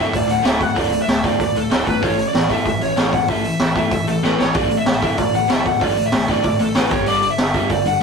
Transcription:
Already playing: overdriven electric guitar D2 A2 D3
0.00 lead electric guitar E5
0.13 picked electric bass D1, overdriven electric guitar D2 A2, lead electric guitar D5, kick, open hi-hat
0.27 picked electric bass D1, overdriven electric guitar D2 A2, lead electric guitar F#5, open hi-hat
0.43 picked electric bass D1, overdriven electric guitar D2 A2 D3, lead electric guitar E5, snare, open hi-hat
0.59 overdriven electric guitar D2 A2, lead electric guitar F#5, kick, open hi-hat
0.75 picked electric bass D1, overdriven electric guitar D2 A2 D3, lead electric guitar D5, kick, open hi-hat
0.92 overdriven electric guitar D2 A2, open hi-hat
1.02 lead electric guitar E5
1.07 picked electric bass D1, overdriven electric guitar D2 A2, snare, open hi-hat
1.23 overdriven electric guitar D2 A2 D3, lead electric guitar D5, kick, open hi-hat
1.40 picked electric bass D2, overdriven electric guitar D2 A2, lead electric guitar D5, kick, open hi-hat
1.55 picked electric bass D1, overdriven electric guitar D2 A2, lead electric guitar A4, open hi-hat
1.70 picked electric bass D1, overdriven electric guitar D2 A2 D3, snare, open hi-hat
1.86 picked electric bass G1, overdriven electric guitar D2 A2, lead electric guitar B4, kick, open hi-hat
2.02 picked electric bass A1, overdriven electric guitar A2 E3 A3, lead electric guitar C#5, kick, open hi-hat
2.18 overdriven electric guitar A2 E3, open hi-hat
2.28 lead electric guitar D5
2.33 picked electric bass A1, overdriven electric guitar A2 E3, snare, open hi-hat
2.49 overdriven electric guitar A2 E3 A3, lead electric guitar E5, kick, open hi-hat
2.65 picked electric bass A1, overdriven electric guitar A2 E3, lead electric guitar E5, kick, open hi-hat
2.80 picked electric bass A1, overdriven electric guitar A2 E3, lead electric guitar C#5, open hi-hat
2.96 picked electric bass A1, overdriven electric guitar A2 E3 A3, snare, open hi-hat
3.13 overdriven electric guitar A2 E3, lead electric guitar F#5, kick, open hi-hat
3.28 picked electric bass A1, overdriven electric guitar A2 E3 A3, lead electric guitar E5, kick, open hi-hat
3.44 overdriven electric guitar A2 E3, open hi-hat
3.59 picked electric bass A1, overdriven electric guitar A2 E3, snare, open hi-hat
3.75 overdriven electric guitar A2 E3 A3, lead electric guitar E5, kick, open hi-hat
3.91 overdriven electric guitar A2 E3, picked electric bass A2, kick, open hi-hat
4.07 picked electric bass A1, overdriven electric guitar A2 E3, lead electric guitar A4, open hi-hat
4.23 picked electric bass A1, overdriven electric guitar A2 E3 A3, lead electric guitar B4, snare
4.38 picked electric bass A1, overdriven electric guitar A2 E3, lead electric guitar C#5, snare
4.54 picked electric bass A1, overdriven electric guitar D2 A2 D3, lead electric guitar D5, kick, open hi-hat
4.69 overdriven electric guitar D2 A2, open hi-hat
4.78 lead electric guitar E5
4.85 picked electric bass A1, overdriven electric guitar D2 A2, snare, open hi-hat
5.01 overdriven electric guitar D2 A2 D3, lead electric guitar E5, kick, open hi-hat
5.18 picked electric bass A1, overdriven electric guitar D2 A2, lead electric guitar D5, kick, open hi-hat
5.33 picked electric bass A1, overdriven electric guitar D2 A2, lead electric guitar F#5, open hi-hat
5.48 picked electric bass A1, overdriven electric guitar D2 A2 D3, snare, open hi-hat
5.52 lead electric guitar E5
5.64 overdriven electric guitar D2 A2, lead electric guitar F#5, kick, open hi-hat
5.80 picked electric bass A1, overdriven electric guitar D2 A2 D3, lead electric guitar D5, kick, open hi-hat
5.96 overdriven electric guitar D2 A2, open hi-hat
6.06 lead electric guitar E5
6.12 picked electric bass A1, overdriven electric guitar D2 A2, snare, open hi-hat
6.28 overdriven electric guitar D2 A2 D3, lead electric guitar D5, kick, open hi-hat
6.43 overdriven electric guitar D2 A2, picked electric bass A2, lead electric guitar D5, kick, open hi-hat
6.59 picked electric bass A1, overdriven electric guitar D2 A2, lead electric guitar A4, open hi-hat
6.75 picked electric bass A1, overdriven electric guitar D2 A2 D3, lead electric guitar B4, snare, open hi-hat
6.91 picked electric bass G1, overdriven electric guitar G2 D3 G3, lead electric guitar C#5, kick, open hi-hat
7.06 picked electric bass G1, overdriven electric guitar G2 D3 G3, lead electric guitar D5, open hi-hat
7.22 overdriven electric guitar G2 D3, open hi-hat
7.31 lead electric guitar E5
7.38 picked electric bass G1, overdriven electric guitar G2 D3, snare, open hi-hat
7.54 overdriven electric guitar G2 D3 G3, lead electric guitar E5, kick, open hi-hat
7.70 picked electric bass G1, overdriven electric guitar G2 D3, lead electric guitar D5, kick, open hi-hat
7.85 picked electric bass G1, overdriven electric guitar G2 D3, lead electric guitar F#5, open hi-hat

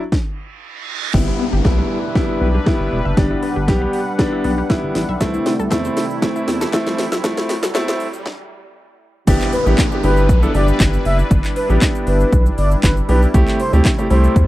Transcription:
0.12 kick, snare, reverse cymbal
1.14 sub bass G1, grand piano G3 B3 E4, synth arpeggio sound G3, analog synth pad G3 D4 E4 B4, kick, snare, crash, downlifter, riser
1.27 synth arpeggio sound E4
1.39 synth arpeggio sound B3
1.53 sub bass G1, synth arpeggio sound G4
1.65 sub bass B1, grand piano G3 B3 E4, kick, snare
1.78 synth arpeggio sound B4
2.15 grand piano G3 B3 E4, synth arpeggio sound G3, kick, snare
2.29 synth arpeggio sound E4
2.41 sub bass B1, synth arpeggio sound B3
2.54 synth arpeggio sound G4
2.66 grand piano G3 B3 E4, synth arpeggio sound E4, kick, snare
2.80 sub bass G1
2.92 sub bass E1
3.05 sub bass F#1, synth arpeggio sound E5
3.17 sub bass G1, grand piano G3 B3 D4, synth arpeggio sound G3, analog synth pad F#5, kick, snare, closed hi-hat
3.31 synth arpeggio sound E4
3.43 synth arpeggio sound B3, open hi-hat
3.56 sub bass G1, synth arpeggio sound G4
3.68 sub bass B1, grand piano G3 B3 G4, kick, snare, closed hi-hat
3.82 synth arpeggio sound B4
3.93 open hi-hat
4.19 grand piano G3 B3 D4, synth arpeggio sound G3, kick, snare, closed hi-hat
4.32 synth arpeggio sound E4
4.44 sub bass B1, synth arpeggio sound B3, open hi-hat
4.58 synth arpeggio sound G4
4.69 grand piano G3 B3 E4, synth arpeggio sound E4, kick, snare, closed hi-hat
4.83 sub bass G1
4.95 sub bass A1, snare, open hi-hat
5.09 sub bass B1, synth arpeggio sound E5
5.20 sub bass C2, analog synth pad C3 A3 E4, grand piano A3 C4 E4, synth arpeggio sound A3, kick, snare, closed hi-hat, shaker
5.34 synth arpeggio sound E4, shaker
5.46 synth arpeggio sound C4, snare, open hi-hat, shaker
5.60 sub bass C2, synth arpeggio sound A4, shaker
5.71 sub bass E2, grand piano A3 C4 E4, kick, snare, clap, closed hi-hat, shaker
5.85 synth arpeggio sound C5, shaker
5.97 snare, open hi-hat, shaker
6.10 shaker
6.22 grand piano A3 C4 E4, synth arpeggio sound A3, kick, snare, closed hi-hat, shaker
6.36 synth arpeggio sound E4, shaker
6.48 sub bass E2, synth arpeggio sound C4, snare, open hi-hat, shaker
6.61 synth arpeggio sound A4, snare, shaker
6.73 grand piano A3 C4 E4, synth arpeggio sound E4, kick, snare, clap, closed hi-hat, shaker
6.87 sub bass C2, snare, shaker
6.98 sub bass A1, snare, open hi-hat, shaker
7.12 sub bass B1, synth arpeggio sound E5, snare, shaker
7.24 sub bass C2, grand piano A3 C4 E4, synth arpeggio sound A3, kick, snare, closed hi-hat, shaker
7.37 synth arpeggio sound E4, snare, shaker
7.49 synth arpeggio sound C4, snare, open hi-hat, shaker
7.63 sub bass C2, synth arpeggio sound A4, snare, shaker
7.75 sub bass E2, grand piano A3 C4 E4, snare, clap, closed hi-hat, shaker
7.88 synth arpeggio sound C5, snare, shaker
8.00 open hi-hat, shaker
8.13 shaker
8.26 kick, snare
9.27 sub bass G1, analog synth pad G3 D4 E4 B4, grand piano B3 D4 E4 G4, kick, closed hi-hat, crash, downlifter, shaker
9.41 clap, shaker
9.53 analog synth lead B4, open hi-hat, shaker
9.66 sub bass A1, grand piano B3 D4 E4 G4, shaker
9.78 kick, snare, clap, closed hi-hat, shaker
9.91 grand piano B3 D4 E4 G4, shaker
10.03 sub bass G1, grand piano B3 D4 E4 G4, analog synth lead B4, open hi-hat, shaker
10.17 shaker
10.29 sub bass B1, kick, closed hi-hat, shaker
10.42 grand piano B3 D4 E4 A4, shaker
10.54 sub bass G1, grand piano B3 D4 E4 G4, analog synth lead D5, open hi-hat, shaker
10.68 shaker
10.80 sub bass G1, kick, snare, clap, closed hi-hat, shaker
10.93 shaker
11.05 sub bass F#1, analog synth lead E5, open hi-hat, shaker
11.19 shaker
11.31 sub bass G1, kick, closed hi-hat, shaker
11.44 clap, shaker
11.56 analog synth lead B4, open hi-hat, shaker
11.69 sub bass A1, grand piano B3 D4 E4 G4, shaker
11.82 kick, snare, clap, closed hi-hat, shaker
11.95 shaker
12.07 sub bass G1, analog synth lead B4, open hi-hat, shaker
12.20 shaker
12.32 sub bass B1, kick, closed hi-hat, shaker
12.46 shaker
12.58 sub bass G1, analog synth lead D5, open hi-hat, shaker
12.71 shaker
12.83 sub bass G1, analog synth lead B4, kick, snare, clap, closed hi-hat, shaker
12.97 shaker
13.09 sub bass B1, grand piano B3 D4 E4 G4, analog synth lead B4, open hi-hat, shaker
13.22 shaker
13.34 sub bass C2, analog synth pad C3 A3, grand piano A3 C4 E4 G4, kick, closed hi-hat, shaker
13.47 clap, shaker
13.60 analog synth lead C5, open hi-hat, shaker
13.73 sub bass D2, grand piano A3 C4 E4 G4, shaker
13.85 kick, snare, clap, closed hi-hat, shaker
13.98 grand piano A3 C4 E4 G4, shaker
14.10 sub bass C2, grand piano A3 C4 E4 G4, analog synth lead C5, open hi-hat, shaker
14.24 shaker
14.36 sub bass E2, kick, closed hi-hat, shaker

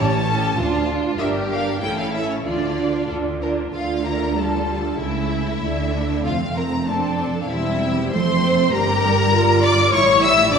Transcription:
Already playing: double bass section A1, cello section A2, viola section C#4 G4, violin section C#5 A5
0.27 viola section C#4 G4, violin section A4
0.57 cello section D2, double bass section D2, viola section D4 F4, violin section F4
0.89 viola section D4 F4
1.19 double bass section G1, cello section G2, viola section D4 A#4, violin section G4 E5
1.51 viola section D4 A#4, violin section F5
1.82 double bass section A1, cello section A2, viola section C#4 A4, violin section E4 G5
1.98 violin section F5
2.13 viola section C#4 A4, violin section E5
2.30 violin section C#5
2.45 double bass section D2, cello section D3, viola section D4 F4, violin section F4 D5
2.79 viola section D4 F4
3.10 double bass section D2, cello section D3, violin section A4
3.42 viola section D4 F4, violin section A#4
3.73 double bass section D2, cello section D3, viola section A3 F4, violin section F4 F5
4.05 violin section A#4 A#5
4.37 viola section G3 F4, violin section A4 A5
4.69 viola section G3
5.00 double bass section C#2, cello section C#3, viola section A3 E4, violin section E4 E5
5.62 double bass section D2, cello section D3, viola section A3 E4
5.93 viola section D4
6.24 double bass section F1, cello section F2, viola section A3 C4, violin section F4 F5
6.55 violin section A#4 A#5
6.86 viola section C4 D4, violin section A4 A5
7.18 viola section C4
7.41 violin section F5
7.48 double bass section E1, cello section E2, viola section G3 C4, violin section E4 E5
8.12 double bass section F1, cello section F2, viola section A3 C4, violin section C5 C6
8.73 double bass section G1, cello section G2, viola section G3 G4, violin section A#4 A#5
9.33 viola section F4
9.62 violin section D5 D6
9.92 double bass section A1, cello section A2, viola section G3 E4, violin section C#5 C#6
10.22 violin section E5 E6
10.52 double bass section D2, cello section D3, viola section F3 D4, violin section D5 D6

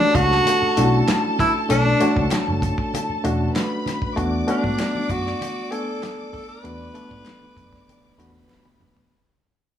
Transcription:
Already playing: reed electric piano A3 C#4 D4 F#4 G4 A4 C#5, tenor saxophone D4, string section A4 A5
0.14 fingered electric bass C#2, tenor saxophone F#4, kick, closed hi-hat, low conga
0.31 snare
0.45 closed hi-hat, muted conga, low conga
0.62 muted fingered electric bass stroke
0.77 fingered electric bass B1, reed electric piano A3 C#4 D4 E4, closed hi-hat
0.84 reed electric piano F#4
1.07 snare, clap, closed hi-hat, muted conga
1.24 muted conga
1.39 tenor saxophone E4, kick, closed hi-hat, high conga, low conga
1.69 fingered electric bass B1, reed electric piano A3 C#4 D4 A4, tenor saxophone D4, closed hi-hat, muted conga
1.85 muted conga
2.00 reed electric piano A3 D4 F#4 C#5, closed hi-hat, high conga
2.16 fingered electric bass C#2, kick, high conga
2.31 snare, clap, closed hi-hat, muted conga
2.47 fingered electric bass F#1, high conga
2.62 kick, closed hi-hat, low conga
2.78 kick
2.94 closed hi-hat, muted conga, low conga
3.09 muted fingered electric bass stroke, muted conga
3.24 fingered electric bass E1, reed electric piano A3 C#4 D4 F#4, closed hi-hat
3.55 string section B4 B5, snare, clap, closed hi-hat, muted conga
3.86 snare, closed hi-hat, high conga, low conga
4.02 kick
4.15 fingered electric bass E2, reed electric piano A3 B3 D4 F#4, string section D5 D6, kick, closed hi-hat, muted conga
4.33 muted conga
4.47 reed electric piano A3 B3 D4 F#4, tenor saxophone D4, closed hi-hat, high conga
4.64 fingered electric bass G#2, kick, high conga
4.79 snare, clap, closed hi-hat, muted conga
4.95 muted conga, high conga
5.09 fingered electric bass F#2, tenor saxophone F#4, kick, closed hi-hat, low conga
5.27 snare
5.41 closed hi-hat, low conga
5.56 muted conga
5.71 reed electric piano A3 B3 D4 G#5, tenor saxophone A4, closed hi-hat
6.02 snare, clap, closed hi-hat, muted conga
6.19 muted conga
6.33 tenor saxophone A4, kick, open hi-hat, high conga, low conga
6.49 tenor saxophone B4
6.63 fingered electric bass E2, reed electric piano A3 B3 D4 F#4, closed hi-hat
6.79 muted conga
6.94 reed electric piano A3 B3 D4 A4, closed hi-hat, high conga
7.10 fingered electric bass G#2, kick, high conga
7.25 snare, clap, closed hi-hat, muted conga
7.41 muted conga, high conga
7.57 fingered electric bass F#2, kick, closed hi-hat, low conga
7.72 kick, snare
7.88 closed hi-hat, muted conga, low conga
8.03 muted fingered electric bass stroke, muted conga
8.18 fingered electric bass E2, reed electric piano A3 B3 D4 F#4, string section B4 B5, closed hi-hat
8.50 snare, clap, muted conga, high conga
8.66 high tom
8.80 mid tom, high conga, low conga
8.97 floor tom

